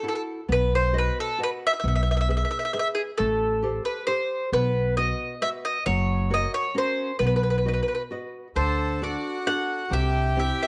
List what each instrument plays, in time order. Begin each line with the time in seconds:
0.03 nylon-string guitar E4 F#4 A4
0.08 mandolin A4
0.15 mandolin A4
0.49 upright bass B1, nylon-string guitar B3, mandolin B4
0.75 mandolin C5
0.93 nylon-string guitar F#4 B4 D#5
0.98 mandolin B4
1.20 mandolin A4
1.38 nylon-string guitar F#4 B4 D#5
1.43 mandolin B4
1.67 mandolin E5
1.80 mandolin E5
1.84 upright bass B1, nylon-string guitar B3
1.88 mandolin E5
1.95 mandolin E5
2.03 mandolin E5
2.11 mandolin E5
2.17 mandolin E5
2.28 nylon-string guitar G#4 B4 E5, mandolin E5
2.37 mandolin E5
2.45 mandolin E5
2.51 mandolin E5
2.59 mandolin E5
2.65 mandolin E5
2.73 nylon-string guitar G#4 B4 E5, mandolin E5
2.79 mandolin E5
2.95 mandolin G#4
3.18 upright bass A1, nylon-string guitar A3, mandolin A4
3.63 nylon-string guitar G4 A4 C5
3.85 mandolin B4
4.07 nylon-string guitar G4 A4 C5, mandolin C5
4.52 upright bass B1, nylon-string guitar B3, mandolin B4
4.97 nylon-string guitar F#4 B4 D#5, mandolin D#5
5.41 nylon-string guitar F#4 B4 D#5, mandolin E5
5.65 mandolin D#5
5.86 upright bass F#1, nylon-string guitar F#3, mandolin C#5
6.30 nylon-string guitar F#4 A#4 C#5, mandolin D#5
6.54 mandolin C#5
6.75 nylon-string guitar C#4 F#4 A#4, mandolin C5
7.19 upright bass B1, nylon-string guitar B3, mandolin B4
7.27 mandolin B4
7.36 mandolin B4
7.43 mandolin B4
7.50 mandolin B4
7.58 mandolin B4
7.65 nylon-string guitar F#4 B4 D#5, mandolin B4
7.73 mandolin B4
7.83 mandolin B4
7.88 mandolin B4
7.95 mandolin B4
8.11 nylon-string guitar F#4 B4 D#5
8.56 upright bass D2, nylon-string guitar D3, accordion A4, mandolin C5
9.02 nylon-string guitar D4 F#4 A4, accordion F#4, mandolin D5
9.47 nylon-string guitar D4 F#4 A4, mandolin F#5
9.90 upright bass C2, nylon-string guitar C3, accordion G4, mandolin E5
10.36 nylon-string guitar C4 E4 G4, mandolin E5
10.63 mandolin E5